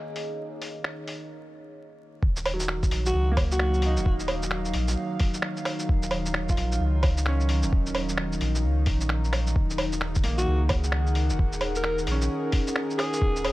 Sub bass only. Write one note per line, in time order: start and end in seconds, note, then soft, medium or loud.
2.23 2.90 D#1 loud
2.91 3.12 A#1 medium
3.14 3.98 C#2 medium
3.97 4.73 D#1 medium
4.75 4.96 A#1 medium
5.89 6.56 D#1 loud
6.57 6.79 A#1 medium
6.80 7.65 C#2 medium
7.63 8.39 D#1 medium
8.41 8.65 A#1 medium
8.63 8.88 C#2 loud
8.87 9.54 A#1 medium
9.56 10.23 D#1 loud
10.25 10.46 A#1 medium
10.47 11.32 C#2 medium
11.30 12.06 D#1 medium
12.07 12.29 A#1 medium
13.22 13.52 D#1 loud